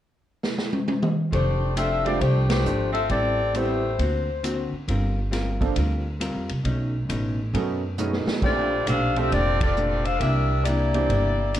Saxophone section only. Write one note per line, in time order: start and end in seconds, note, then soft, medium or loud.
1.33 1.74 A3 medium
1.33 1.74 D4 medium
1.33 1.74 G4 medium
1.33 1.74 C5 medium
1.76 2.03 C4 medium
1.76 2.03 F4 medium
1.76 2.03 A4 medium
1.76 2.04 E5 medium
2.04 2.19 C4 medium
2.04 2.19 G4 medium
2.04 2.20 A4 medium
2.04 2.20 D5 medium
2.20 2.48 A3 medium
2.20 2.48 D4 medium
2.20 2.48 G4 medium
2.20 2.48 C5 medium
2.49 2.91 A3 medium
2.49 2.91 D4 medium
2.49 2.91 G4 medium
2.49 2.91 C5 medium
2.93 3.08 C4 medium
2.93 3.08 F4 medium
2.93 3.08 A4 medium
2.93 3.08 E5 medium
3.10 3.51 C4 medium
3.10 3.51 G4 medium
3.10 3.52 A4 medium
3.10 3.51 D5 medium
3.55 3.99 A3 medium
3.55 3.99 E4 medium
3.55 3.99 G4 medium
3.55 4.72 C5 medium
8.44 8.85 C4 medium
8.44 8.85 F4 medium
8.44 8.85 A4 medium
8.44 8.85 D5 medium
8.88 9.15 D4 medium
8.88 9.15 A4 medium
8.88 9.15 C5 medium
8.88 9.15 F5 medium
9.17 9.31 C4 medium
9.17 9.31 F4 medium
9.17 9.31 A4 medium
9.17 9.33 E5 medium
9.32 9.60 C4 medium
9.32 9.60 F4 medium
9.32 9.61 A4 medium
9.32 9.60 D5 medium
9.61 10.03 C4 medium
9.61 10.03 F4 medium
9.61 10.03 A4 medium
9.61 10.03 D5 medium
10.04 10.18 D4 medium
10.04 10.21 A4 medium
10.04 10.21 C5 medium
10.04 10.21 F5 medium
10.19 10.65 D4 medium
10.19 10.63 G4 medium
10.19 10.65 A#4 medium
10.19 10.65 E5 medium
10.64 11.60 A#3 medium
10.64 11.60 E4 medium
10.64 11.60 G4 medium
10.64 11.60 D5 medium